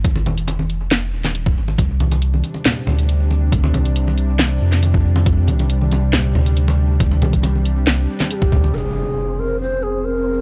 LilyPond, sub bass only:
\new Staff \with { instrumentName = "Sub bass" } { \clef bass \time 4/4 \key f \dorian \tempo 4 = 138 aes,,8 f,,4. f,,8 ees,,4 aes,,8 | c,4. r4 d,4.~ | d,8 c,2 f,4.~ | f,8 c,2 d,4.~ |
d,8 c,4. c,8 r4 d,8 | f,,1 | }